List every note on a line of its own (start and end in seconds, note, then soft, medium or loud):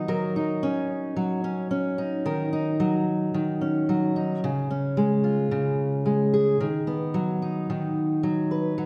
0.00 0.66 D#3 medium
0.00 0.14 B3 medium
0.00 0.36 D#4 medium
0.08 1.16 F#3 medium
0.08 2.26 A#4 medium
0.36 1.98 D#4 medium
0.63 1.44 C#4 medium
1.16 2.79 F#3 medium
1.44 1.70 C#4 medium
1.71 2.56 C#4 medium
1.98 2.52 D#4 medium
2.25 3.33 D#3 medium
2.25 4.43 A#4 medium
2.53 4.15 D#4 medium
2.80 3.88 F#3 medium
3.34 4.43 D#3 medium
3.61 4.70 C#4 medium
3.89 4.48 F#3 medium
4.16 4.48 D#4 medium
4.44 5.50 C#3 medium
4.71 6.66 C#4 medium
4.97 6.04 G#3 medium
5.24 6.65 F4 medium
5.51 6.60 C#3 medium
6.06 6.66 G#3 medium
6.34 6.66 G#4 medium
6.60 7.69 D#3 medium
6.87 8.83 B3 medium
7.14 8.23 F#3 medium
7.42 8.86 D#4 medium
7.70 8.86 D#3 medium
8.23 8.77 F#3 medium
8.51 8.83 B4 medium
8.78 8.86 F#3 medium